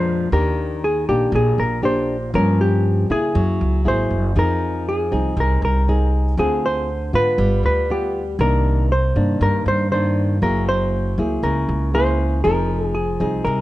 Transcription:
Already playing: upright bass F2, nylon-string guitar A#2 F3 G#3 D4, hollow-body jazz guitar C5
0.32 upright bass D#2, nylon-string guitar D#3 A#3 D4 G4, hollow-body jazz guitar A#4
0.84 hollow-body jazz guitar G#4
1.09 upright bass A#1, nylon-string guitar A#3 D4 G4, hollow-body jazz guitar G4
1.32 upright bass A#1, nylon-string guitar A#2, hollow-body jazz guitar G#4
1.58 upright bass A#1, hollow-body jazz guitar A#4
1.83 nylon-string guitar A#3 D4 G4, hollow-body jazz guitar C5
2.34 upright bass G2, nylon-string guitar G2 F3 A#3 C#4, hollow-body jazz guitar A#4
2.61 hollow-body jazz guitar G4
3.10 upright bass C#3, nylon-string guitar A#3 E4 G#4, hollow-body jazz guitar G#4
3.35 upright bass F#2, nylon-string guitar F#3
3.61 upright bass C#2
3.84 upright bass G#1, nylon-string guitar A#3 E4 G#4, hollow-body jazz guitar C5
4.10 upright bass F#1
4.36 upright bass F2, nylon-string guitar F3 C4 D#4 G#4, hollow-body jazz guitar A#4
4.89 hollow-body jazz guitar G#4
5.12 upright bass C2, nylon-string guitar C4 D#4 G#4
5.37 upright bass C2, nylon-string guitar C3, hollow-body jazz guitar A#4
5.62 upright bass C2, hollow-body jazz guitar A#4
5.88 nylon-string guitar C4 D#4 G#4
6.37 upright bass D2, nylon-string guitar D3 C4 F4 G#4, hollow-body jazz guitar G#4
6.66 hollow-body jazz guitar C5
7.13 upright bass G#2, nylon-string guitar B3 F4, hollow-body jazz guitar B4
7.38 upright bass G1, nylon-string guitar G3
7.63 upright bass D2, hollow-body jazz guitar B4
7.90 nylon-string guitar B3 F4, hollow-body jazz guitar G4
8.39 upright bass C2, nylon-string guitar C3 D#3 A#3 D4, hollow-body jazz guitar A#4
8.92 hollow-body jazz guitar C5
9.16 upright bass G2, nylon-string guitar D#3 A#3 D4
9.41 upright bass G2, nylon-string guitar G2, hollow-body jazz guitar A#4
9.66 upright bass G2, hollow-body jazz guitar C5
9.92 nylon-string guitar D#3 A#3 D4, hollow-body jazz guitar C5
10.42 upright bass F#1, nylon-string guitar F#3 A#3 E4 G#4, hollow-body jazz guitar A#4
10.69 hollow-body jazz guitar C5
11.18 upright bass C#2, nylon-string guitar A#3 E4 G#4
11.43 upright bass C#2, nylon-string guitar C#3, hollow-body jazz guitar A#4
11.69 upright bass C#2
11.94 nylon-string guitar A#3 E4 G#4, hollow-body jazz guitar C5
12.44 upright bass F1, nylon-string guitar F3 C4 D#4 G#4, hollow-body jazz guitar A#4
12.86 hollow-body jazz guitar G#4
12.95 hollow-body jazz guitar G#4
13.20 upright bass C2, nylon-string guitar C4 D#4 G#4
13.45 upright bass C2, nylon-string guitar C3, hollow-body jazz guitar A#4

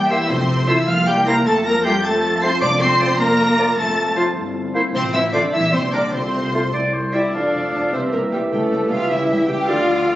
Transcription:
Already playing: double bass section E2, cello section G3, french horn section A#3 G4, trumpet G4, violin section G5, flute G5
0.09 cello section E3, bassoon A#3, trumpet E4, viola section E4, clarinet G4, oboe C5, violin section E5 E6, flute E5
0.28 timpani F2, double bass section F2, cello section C3, french horn section A3 F4, trumpet C4, viola section C4, violin section C5 C6, flute C5
0.67 cello section E3, bassoon A3, trumpet E4, viola section E4, clarinet F4, oboe C5, flute E5, violin section E5 E6
0.87 double bass section C2, cello section F3, french horn section A#3 E4, trumpet F4, viola section F4, flute F5, violin section F5 F6
1.06 cello section G3, trumpet G4, viola section G4, flute G5, violin section G5 G6
1.27 bassoon A#3, cello section A#3, clarinet E4, trumpet A#4, viola section A#4, oboe C5, flute A#5, violin section A#5 A#6
1.46 double bass section F2, cello section A3, french horn section C4 F4, trumpet A4, viola section A4, flute A5, violin section A5 A6
1.65 cello section A#3, trumpet A#4, viola section A#4, flute A#5, violin section A#5 A#6
1.84 cello section G3, bassoon A3, clarinet F4, viola section G4, trumpet G4, oboe C5, flute G5, violin section G5 G6
2.04 cello section A3, viola section A4, trumpet A4, violin section A5 A6, flute A5
2.41 bassoon A3, cello section C4, clarinet F4, oboe C5, viola section C5, trumpet C5, flute C6, violin section C6 C7
2.61 timpani F2, double bass section F2, french horn section D4, cello section D4, viola section D5, trumpet D5, violin section D6 D7, flute D6
2.80 cello section C4, trumpet C5, viola section C5, violin section C6 C7, flute C6
3.00 bassoon F3, clarinet F4, oboe D5
3.20 double bass section F2, cello section A#3, trumpet A#4, viola section A#4, violin section A#5 A#6, flute A#5
3.57 bassoon F3, clarinet F4, oboe D5
3.76 double bass section F2, cello section A3, french horn section C4 F4, trumpet A4, viola section A4, flute A5, violin section A5 A6
4.16 bassoon F3, clarinet F4, oboe C5
4.36 double bass section G1, french horn section E4
4.75 bassoon A#3, clarinet E4, oboe C5
4.94 double bass section A1, cello section C3, trumpet C4, viola section C4, french horn section F4, flute C5, violin section C5 C6
5.13 cello section E3, trumpet E4, viola section E4, flute E5, violin section E5 E6
5.32 cello section D3, bassoon A3, trumpet D4, viola section D4, clarinet F4, oboe C5, flute D5, violin section D5 D6
5.51 double bass section A#1, cello section E3, french horn section G3 D4, trumpet E4, viola section E4, flute E5, violin section E5 E6
5.72 cello section C3, trumpet C4, viola section C4, flute C5, violin section C5 C6
5.92 cello section D3, bassoon G3, clarinet D4, trumpet D4, viola section D4, oboe A#4, flute D5, violin section D5 D6
6.12 double bass section C2, cello section C3, french horn section A3 F4, trumpet C4, viola section C4, flute C5, violin section C5 C6
6.53 bassoon A3, clarinet F4, oboe C5
6.73 double bass section C2, french horn section G3 E4, oboe D5
6.94 oboe C5
7.13 bassoon G3, clarinet E4, viola section E4, oboe D5, violin section E5, flute E5
7.33 double bass section F1, cello section F2, bassoon F3, french horn section A3 F4, viola section D4, clarinet A4, violin section D5 A5, flute D5, oboe F5
7.54 double bass section F1, cello section F2, violin section A5
7.74 double bass section F1, cello section F2, violin section A5
7.92 double bass section C2, cello section C3, bassoon E3, french horn section G3 E4, viola section C4, clarinet G4, flute C5, violin section C5 E5, oboe E5
8.12 double bass section C2, cello section C3, viola section A#3, violin section A#4 E5, flute A#4
8.32 double bass section C2, cello section C3, viola section G3, flute G4, violin section G4 E5
8.51 double bass section C#2, cello section C#3, french horn section G3 E4, viola section A3, flute A4, violin section A4 G5
8.72 double bass section C#2, cello section C#3, violin section G5
8.90 double bass section C#2, cello section C#3, viola section F4, flute F5, violin section F5 G5
9.09 double bass section C#2, cello section C#3, french horn section G3 E4, viola section E4, violin section E5 G5, flute E5
9.29 double bass section C#2, cello section C#3, violin section G5
9.48 double bass section C#2, cello section C#3, viola section G4, violin section G5, flute G5
9.67 double bass section D2, bassoon D3, cello section D3, french horn section F3 D4, viola section F4, clarinet A4, oboe D5, violin section F5, flute F5

